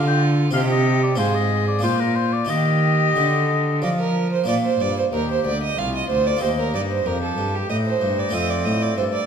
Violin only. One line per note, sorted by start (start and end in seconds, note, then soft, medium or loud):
0.00 0.53 F4 medium
0.54 1.17 G4 medium
1.18 1.85 G#4 medium
1.83 2.51 F4 medium
2.50 3.82 G4 medium
3.83 3.89 D5 medium
3.99 4.32 A#4 medium
4.33 4.47 C5 medium
4.48 4.55 D5 medium
4.65 4.83 C5 medium
4.81 4.97 D5 medium
4.98 5.05 C5 medium
5.13 5.29 A#4 medium
5.31 5.46 C5 medium
5.46 5.62 D5 medium
5.64 5.80 D#5 medium
5.78 5.94 F5 medium
5.95 6.09 D#5 medium
6.10 6.28 C5 medium
6.27 6.42 D5 medium
6.42 6.49 C5 medium
6.59 6.74 A#4 medium
6.75 6.81 D5 medium
6.91 7.07 C5 medium
7.06 7.22 A#4 medium
7.22 7.57 A4 medium
7.55 7.69 G4 medium
7.70 7.76 D#5 medium
7.86 8.20 C5 medium
8.19 8.35 D5 medium
8.33 8.52 D#5 medium
8.50 8.67 D5 medium
8.65 8.84 D#5 medium
8.83 8.96 D5 medium
8.97 9.04 C5 medium
9.13 9.26 D5 medium